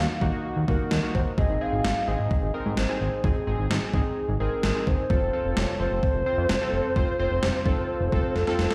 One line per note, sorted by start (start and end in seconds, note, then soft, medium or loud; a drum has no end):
0.00 0.14 A#3 medium
0.00 0.14 D#4 medium
0.00 0.14 F#4 medium
0.00 0.41 F5 loud
0.21 0.30 D#2 loud
0.21 0.60 A#3 medium
0.21 0.60 D#4 medium
0.21 0.60 F#4 medium
0.21 kick medium
0.57 0.65 D#2 loud
0.68 0.77 D#2 loud
0.68 0.97 A#3 medium
0.68 0.97 D#4 medium
0.68 0.97 F#4 medium
0.68 1.11 A#4 medium
0.68 kick loud
0.91 1.00 D#2 loud
0.91 snare loud
1.03 1.32 A#3 medium
1.03 1.32 D#4 medium
1.03 1.32 F#4 medium
1.15 1.23 D#2 medium
1.15 1.25 C5 medium
1.15 kick medium
1.38 1.47 G#1 loud
1.38 1.57 C4 medium
1.38 1.57 D#4 medium
1.38 1.57 G#4 medium
1.38 1.63 D#5 loud
1.38 kick loud
1.50 1.58 G#1 loud
1.61 2.00 C4 medium
1.61 2.00 D#4 medium
1.61 2.00 G#4 medium
1.61 2.09 F5 loud
1.73 1.82 G#1 loud
1.85 1.93 G#1 loud
1.85 snare loud
2.08 2.16 G#1 loud
2.08 2.46 C4 medium
2.08 2.46 D#4 medium
2.08 2.46 G#4 medium
2.08 2.54 D#5 medium
2.19 2.28 G#1 medium
2.31 kick medium
2.43 2.51 G#1 medium
2.54 2.83 C4 medium
2.54 2.83 D#4 medium
2.54 2.83 A#4 medium
2.66 2.75 G#2 loud
2.77 2.86 G#1 loud
2.77 3.21 C5 medium
2.77 snare loud
2.89 3.18 C4 medium
2.89 3.18 D#4 medium
2.89 3.18 G#4 medium
3.01 3.09 G#1 medium
3.24 3.33 G#1 loud
3.24 3.43 C4 medium
3.24 3.43 D#4 medium
3.24 3.43 G#4 medium
3.24 3.67 G#4 medium
3.24 kick loud
3.47 3.56 G#1 loud
3.47 3.86 C4 medium
3.47 3.86 D#4 medium
3.47 3.86 G#4 medium
3.59 3.68 G#1 loud
3.71 3.79 G#1 loud
3.71 4.36 G#4 medium
3.71 snare loud
3.94 4.02 G#1 loud
3.94 4.32 C4 medium
3.94 4.32 D#4 medium
3.94 4.32 G#4 medium
3.94 kick medium
4.29 4.37 G#1 loud
4.40 4.49 G#1 loud
4.40 4.69 C4 medium
4.40 4.69 D#4 medium
4.40 4.69 G#4 medium
4.40 4.88 A#4 loud
4.63 4.72 G#1 loud
4.63 snare loud
4.75 5.04 C4 medium
4.75 5.04 D#4 medium
4.75 5.04 G#4 medium
4.87 4.96 G#1 loud
4.87 5.58 C5 loud
4.87 kick medium
5.10 5.19 F1 loud
5.10 5.29 C4 medium
5.10 5.29 F4 medium
5.10 5.29 A4 medium
5.10 kick loud
5.22 5.30 F1 loud
5.33 5.72 C4 medium
5.33 5.72 F4 medium
5.33 5.72 A4 medium
5.45 5.54 F1 loud
5.57 5.65 F1 loud
5.57 5.80 C#5 loud
5.57 snare loud
5.80 5.88 F1 loud
5.80 6.18 C4 medium
5.80 6.18 F4 medium
5.80 6.18 A4 medium
5.80 8.32 C5 loud
5.91 6.00 F1 medium
6.03 kick medium
6.15 6.23 F1 medium
6.26 6.55 C4 medium
6.26 6.55 F4 medium
6.26 6.55 C5 medium
6.38 6.47 F2 loud
6.49 6.58 F1 loud
6.49 snare loud
6.61 6.90 C4 medium
6.61 6.90 F4 medium
6.61 6.90 A4 medium
6.73 6.81 F1 loud
6.96 7.05 F1 loud
6.96 7.15 C4 medium
6.96 7.15 F4 medium
6.96 7.15 C5 loud
6.96 kick loud
7.19 7.28 F1 loud
7.19 7.58 C4 medium
7.19 7.58 F4 medium
7.19 7.58 C5 loud
7.31 7.40 F1 loud
7.43 7.51 F1 loud
7.43 snare loud
7.66 7.74 F1 loud
7.66 8.04 C4 medium
7.66 8.04 F4 medium
7.66 8.04 A4 medium
7.66 kick medium
8.01 8.09 F1 loud
8.12 8.21 F1 loud
8.12 8.41 C4 medium
8.12 8.41 F4 medium
8.12 8.41 A4 loud
8.12 kick loud
8.36 8.44 F1 loud
8.36 8.75 A4 medium
8.36 snare medium
8.47 8.75 C4 medium
8.47 8.75 F4 medium
8.47 8.75 A4 loud
8.47 snare medium
8.59 8.67 F1 loud
8.59 snare medium
8.71 snare medium